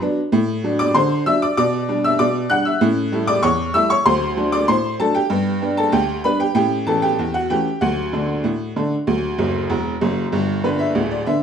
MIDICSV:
0, 0, Header, 1, 2, 480
1, 0, Start_track
1, 0, Key_signature, 1, "major"
1, 0, Tempo, 622407
1, 245, Time_signature, 2, 2, 24, 8
1, 5045, Tempo, 628931
1, 8775, End_track
2, 0, Start_track
2, 0, Title_t, "Honky-tonk piano"
2, 0, Program_c, 0, 3
2, 12, Note_on_c, 0, 59, 62
2, 13, Note_on_c, 0, 54, 55
2, 17, Note_on_c, 0, 62, 62
2, 142, Note_off_c, 0, 54, 0
2, 142, Note_off_c, 0, 59, 0
2, 146, Note_off_c, 0, 62, 0
2, 249, Note_on_c, 0, 45, 108
2, 413, Control_c, 0, 64, 127
2, 451, Note_off_c, 0, 45, 0
2, 492, Note_on_c, 0, 54, 52
2, 497, Note_on_c, 0, 62, 61
2, 611, Note_on_c, 0, 86, 110
2, 622, Note_off_c, 0, 54, 0
2, 623, Note_on_c, 0, 74, 78
2, 626, Note_off_c, 0, 62, 0
2, 727, Note_off_c, 0, 74, 0
2, 728, Note_off_c, 0, 86, 0
2, 729, Note_on_c, 0, 84, 95
2, 732, Note_on_c, 0, 50, 78
2, 734, Control_c, 0, 64, 0
2, 737, Note_on_c, 0, 72, 73
2, 934, Note_off_c, 0, 50, 0
2, 955, Note_off_c, 0, 72, 0
2, 968, Note_off_c, 0, 84, 0
2, 973, Note_on_c, 0, 88, 103
2, 976, Note_on_c, 0, 54, 63
2, 977, Note_on_c, 0, 62, 59
2, 980, Note_on_c, 0, 76, 85
2, 1085, Note_off_c, 0, 76, 0
2, 1090, Note_off_c, 0, 88, 0
2, 1097, Note_on_c, 0, 86, 86
2, 1105, Note_off_c, 0, 54, 0
2, 1106, Note_off_c, 0, 62, 0
2, 1106, Note_on_c, 0, 74, 67
2, 1202, Note_off_c, 0, 86, 0
2, 1208, Note_off_c, 0, 74, 0
2, 1214, Note_on_c, 0, 86, 113
2, 1215, Note_on_c, 0, 47, 98
2, 1224, Note_on_c, 0, 74, 87
2, 1366, Control_c, 0, 64, 127
2, 1415, Note_off_c, 0, 47, 0
2, 1454, Note_on_c, 0, 55, 55
2, 1457, Note_on_c, 0, 62, 62
2, 1551, Note_off_c, 0, 74, 0
2, 1570, Note_off_c, 0, 86, 0
2, 1577, Note_on_c, 0, 88, 107
2, 1584, Note_off_c, 0, 55, 0
2, 1585, Note_on_c, 0, 76, 78
2, 1586, Note_off_c, 0, 62, 0
2, 1688, Note_off_c, 0, 76, 0
2, 1689, Note_on_c, 0, 86, 99
2, 1691, Note_off_c, 0, 88, 0
2, 1692, Control_c, 0, 64, 0
2, 1692, Note_on_c, 0, 47, 85
2, 1696, Note_on_c, 0, 74, 72
2, 1893, Note_off_c, 0, 47, 0
2, 1915, Note_off_c, 0, 74, 0
2, 1925, Note_on_c, 0, 90, 110
2, 1927, Note_off_c, 0, 86, 0
2, 1930, Note_on_c, 0, 55, 54
2, 1932, Note_on_c, 0, 62, 59
2, 1936, Note_on_c, 0, 78, 87
2, 2043, Note_off_c, 0, 78, 0
2, 2045, Note_off_c, 0, 90, 0
2, 2046, Note_on_c, 0, 88, 79
2, 2058, Note_on_c, 0, 76, 62
2, 2061, Note_off_c, 0, 55, 0
2, 2062, Note_off_c, 0, 62, 0
2, 2164, Note_off_c, 0, 76, 0
2, 2166, Note_off_c, 0, 88, 0
2, 2167, Note_on_c, 0, 45, 105
2, 2182, Note_on_c, 0, 61, 65
2, 2310, Note_off_c, 0, 61, 0
2, 2315, Control_c, 0, 64, 127
2, 2370, Note_off_c, 0, 45, 0
2, 2406, Note_on_c, 0, 55, 56
2, 2411, Note_on_c, 0, 57, 55
2, 2415, Note_on_c, 0, 64, 60
2, 2525, Note_on_c, 0, 86, 112
2, 2533, Note_on_c, 0, 74, 82
2, 2538, Note_off_c, 0, 55, 0
2, 2541, Note_off_c, 0, 57, 0
2, 2544, Note_off_c, 0, 64, 0
2, 2641, Note_off_c, 0, 74, 0
2, 2642, Note_on_c, 0, 85, 97
2, 2645, Note_off_c, 0, 86, 0
2, 2645, Note_on_c, 0, 40, 83
2, 2652, Control_c, 0, 64, 0
2, 2652, Note_on_c, 0, 73, 71
2, 2849, Note_off_c, 0, 40, 0
2, 2871, Note_off_c, 0, 73, 0
2, 2883, Note_off_c, 0, 85, 0
2, 2884, Note_on_c, 0, 88, 111
2, 2886, Note_on_c, 0, 55, 58
2, 2889, Note_on_c, 0, 57, 53
2, 2893, Note_on_c, 0, 64, 60
2, 2893, Note_on_c, 0, 76, 86
2, 3000, Note_off_c, 0, 76, 0
2, 3004, Note_off_c, 0, 88, 0
2, 3008, Note_on_c, 0, 85, 96
2, 3017, Note_off_c, 0, 55, 0
2, 3020, Note_off_c, 0, 57, 0
2, 3020, Note_on_c, 0, 73, 70
2, 3022, Note_off_c, 0, 64, 0
2, 3124, Note_off_c, 0, 73, 0
2, 3126, Note_off_c, 0, 85, 0
2, 3128, Note_on_c, 0, 84, 114
2, 3131, Note_on_c, 0, 38, 90
2, 3137, Note_on_c, 0, 72, 84
2, 3146, Note_on_c, 0, 54, 56
2, 3272, Note_off_c, 0, 54, 0
2, 3289, Control_c, 0, 64, 127
2, 3332, Note_off_c, 0, 38, 0
2, 3369, Note_on_c, 0, 54, 52
2, 3373, Note_on_c, 0, 57, 47
2, 3374, Note_on_c, 0, 62, 52
2, 3466, Note_off_c, 0, 72, 0
2, 3485, Note_off_c, 0, 84, 0
2, 3489, Note_on_c, 0, 86, 104
2, 3499, Note_off_c, 0, 54, 0
2, 3499, Note_on_c, 0, 74, 80
2, 3502, Note_off_c, 0, 57, 0
2, 3503, Note_off_c, 0, 62, 0
2, 3604, Note_off_c, 0, 74, 0
2, 3606, Note_off_c, 0, 86, 0
2, 3610, Control_c, 0, 64, 0
2, 3610, Note_on_c, 0, 84, 100
2, 3613, Note_on_c, 0, 45, 79
2, 3617, Note_on_c, 0, 72, 74
2, 3813, Note_off_c, 0, 45, 0
2, 3834, Note_off_c, 0, 72, 0
2, 3847, Note_off_c, 0, 84, 0
2, 3853, Note_on_c, 0, 81, 96
2, 3854, Note_on_c, 0, 54, 51
2, 3856, Note_on_c, 0, 57, 51
2, 3861, Note_on_c, 0, 62, 55
2, 3861, Note_on_c, 0, 69, 70
2, 3965, Note_off_c, 0, 69, 0
2, 3968, Note_on_c, 0, 79, 90
2, 3969, Note_off_c, 0, 81, 0
2, 3977, Note_on_c, 0, 67, 70
2, 3983, Note_off_c, 0, 54, 0
2, 3985, Note_off_c, 0, 57, 0
2, 3989, Note_off_c, 0, 62, 0
2, 4087, Note_on_c, 0, 43, 94
2, 4102, Note_on_c, 0, 59, 56
2, 4230, Note_off_c, 0, 59, 0
2, 4252, Control_c, 0, 64, 127
2, 4290, Note_off_c, 0, 43, 0
2, 4330, Note_on_c, 0, 55, 46
2, 4334, Note_on_c, 0, 59, 48
2, 4336, Note_on_c, 0, 62, 58
2, 4421, Note_off_c, 0, 67, 0
2, 4448, Note_off_c, 0, 79, 0
2, 4453, Note_on_c, 0, 81, 88
2, 4461, Note_off_c, 0, 55, 0
2, 4463, Note_on_c, 0, 69, 67
2, 4464, Note_off_c, 0, 59, 0
2, 4465, Note_off_c, 0, 62, 0
2, 4567, Note_off_c, 0, 69, 0
2, 4567, Note_on_c, 0, 79, 82
2, 4570, Note_off_c, 0, 81, 0
2, 4570, Note_on_c, 0, 38, 76
2, 4575, Note_on_c, 0, 67, 60
2, 4577, Control_c, 0, 64, 0
2, 4773, Note_off_c, 0, 38, 0
2, 4794, Note_off_c, 0, 67, 0
2, 4807, Note_off_c, 0, 79, 0
2, 4813, Note_on_c, 0, 83, 83
2, 4815, Note_on_c, 0, 55, 48
2, 4820, Note_on_c, 0, 59, 46
2, 4822, Note_on_c, 0, 62, 55
2, 4822, Note_on_c, 0, 71, 65
2, 4927, Note_off_c, 0, 71, 0
2, 4930, Note_off_c, 0, 83, 0
2, 4935, Note_on_c, 0, 79, 81
2, 4945, Note_off_c, 0, 55, 0
2, 4945, Note_on_c, 0, 67, 55
2, 4949, Note_off_c, 0, 59, 0
2, 4950, Note_off_c, 0, 62, 0
2, 5038, Note_off_c, 0, 79, 0
2, 5045, Note_off_c, 0, 67, 0
2, 5049, Note_on_c, 0, 45, 90
2, 5050, Note_on_c, 0, 79, 89
2, 5056, Note_on_c, 0, 67, 72
2, 5065, Note_on_c, 0, 61, 60
2, 5183, Control_c, 0, 64, 127
2, 5192, Note_off_c, 0, 61, 0
2, 5252, Note_off_c, 0, 45, 0
2, 5275, Note_off_c, 0, 67, 0
2, 5288, Note_off_c, 0, 79, 0
2, 5293, Note_on_c, 0, 81, 77
2, 5294, Note_on_c, 0, 52, 45
2, 5298, Note_on_c, 0, 57, 43
2, 5300, Note_on_c, 0, 61, 52
2, 5301, Note_on_c, 0, 69, 61
2, 5406, Note_off_c, 0, 69, 0
2, 5410, Note_off_c, 0, 81, 0
2, 5411, Note_on_c, 0, 79, 85
2, 5420, Note_on_c, 0, 67, 68
2, 5424, Note_off_c, 0, 52, 0
2, 5427, Note_off_c, 0, 57, 0
2, 5429, Note_off_c, 0, 61, 0
2, 5537, Control_c, 0, 64, 0
2, 5540, Note_on_c, 0, 40, 67
2, 5638, Note_off_c, 0, 67, 0
2, 5650, Note_off_c, 0, 79, 0
2, 5655, Note_on_c, 0, 78, 72
2, 5663, Note_on_c, 0, 66, 51
2, 5739, Note_off_c, 0, 40, 0
2, 5768, Note_off_c, 0, 66, 0
2, 5772, Note_off_c, 0, 78, 0
2, 5776, Note_on_c, 0, 79, 74
2, 5779, Note_on_c, 0, 52, 49
2, 5779, Note_on_c, 0, 57, 46
2, 5784, Note_on_c, 0, 67, 56
2, 5785, Note_on_c, 0, 61, 54
2, 5908, Note_off_c, 0, 57, 0
2, 5909, Note_off_c, 0, 52, 0
2, 5912, Note_off_c, 0, 61, 0
2, 6000, Note_off_c, 0, 67, 0
2, 6013, Note_off_c, 0, 79, 0
2, 6013, Note_on_c, 0, 78, 76
2, 6019, Note_on_c, 0, 38, 75
2, 6023, Note_on_c, 0, 66, 62
2, 6033, Note_on_c, 0, 54, 55
2, 6159, Note_off_c, 0, 54, 0
2, 6163, Control_c, 0, 64, 127
2, 6219, Note_off_c, 0, 38, 0
2, 6258, Note_on_c, 0, 50, 41
2, 6264, Note_on_c, 0, 57, 37
2, 6265, Note_on_c, 0, 62, 44
2, 6388, Note_off_c, 0, 50, 0
2, 6392, Note_off_c, 0, 57, 0
2, 6393, Note_off_c, 0, 62, 0
2, 6493, Note_on_c, 0, 45, 70
2, 6498, Control_c, 0, 64, 0
2, 6696, Note_off_c, 0, 45, 0
2, 6740, Note_on_c, 0, 50, 48
2, 6741, Note_on_c, 0, 57, 41
2, 6747, Note_on_c, 0, 62, 48
2, 6870, Note_off_c, 0, 50, 0
2, 6871, Note_off_c, 0, 57, 0
2, 6875, Note_off_c, 0, 62, 0
2, 6976, Note_on_c, 0, 38, 75
2, 6992, Note_on_c, 0, 54, 54
2, 7118, Note_off_c, 0, 54, 0
2, 7123, Control_c, 0, 64, 127
2, 7178, Note_off_c, 0, 38, 0
2, 7214, Note_on_c, 0, 30, 62
2, 7216, Note_on_c, 0, 42, 62
2, 7393, Note_off_c, 0, 30, 0
2, 7394, Note_off_c, 0, 42, 0
2, 7428, Note_off_c, 0, 66, 0
2, 7453, Note_on_c, 0, 28, 71
2, 7454, Note_off_c, 0, 78, 0
2, 7455, Note_on_c, 0, 40, 61
2, 7461, Control_c, 0, 64, 0
2, 7633, Note_off_c, 0, 28, 0
2, 7634, Note_off_c, 0, 40, 0
2, 7695, Note_on_c, 0, 30, 66
2, 7695, Note_on_c, 0, 42, 69
2, 7874, Note_off_c, 0, 30, 0
2, 7875, Note_off_c, 0, 42, 0
2, 7930, Note_on_c, 0, 31, 65
2, 7934, Note_on_c, 0, 43, 71
2, 8062, Control_c, 0, 64, 127
2, 8135, Note_off_c, 0, 31, 0
2, 8137, Note_off_c, 0, 43, 0
2, 8173, Note_on_c, 0, 50, 41
2, 8173, Note_on_c, 0, 71, 63
2, 8177, Note_on_c, 0, 59, 35
2, 8182, Note_on_c, 0, 62, 39
2, 8288, Note_on_c, 0, 76, 72
2, 8292, Note_off_c, 0, 71, 0
2, 8304, Note_off_c, 0, 50, 0
2, 8307, Note_off_c, 0, 59, 0
2, 8311, Note_off_c, 0, 62, 0
2, 8409, Note_on_c, 0, 26, 57
2, 8411, Note_on_c, 0, 38, 54
2, 8422, Control_c, 0, 64, 0
2, 8529, Note_off_c, 0, 76, 0
2, 8531, Note_on_c, 0, 74, 56
2, 8613, Note_off_c, 0, 26, 0
2, 8614, Note_off_c, 0, 38, 0
2, 8649, Note_on_c, 0, 76, 69
2, 8650, Note_off_c, 0, 74, 0
2, 8654, Note_on_c, 0, 50, 42
2, 8656, Note_on_c, 0, 59, 38
2, 8660, Note_on_c, 0, 62, 43
2, 8775, Note_off_c, 0, 50, 0
2, 8775, Note_off_c, 0, 59, 0
2, 8775, Note_off_c, 0, 62, 0
2, 8775, Note_off_c, 0, 76, 0
2, 8775, End_track
0, 0, End_of_file